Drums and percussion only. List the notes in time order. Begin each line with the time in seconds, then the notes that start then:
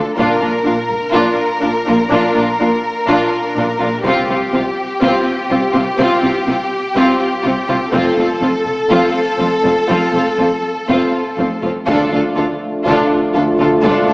0.18 taiko
0.90 taiko
4.05 taiko
7.93 taiko
8.66 taiko
11.88 taiko
12.86 taiko
13.85 taiko